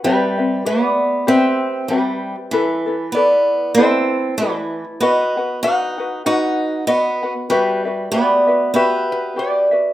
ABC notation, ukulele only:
X:1
M:4/4
L:1/8
Q:"Swing" 1/4=96
K:Em
V:1 name="Ukulele"
[CGBe] [CBe] [GBe]2 [CGBe]2 [CGBe]2 | [EAB] [EAB] [EAB]2 [EABc]2 [EAB]2 | [FB^df] [FBf] [FBdf] [FBf] [FBdf]2 [FBdf] [FBf] | [FGBe] [FBe] [FGBe] [FBe] [FGBe]2 [FGBe] [FBe] |]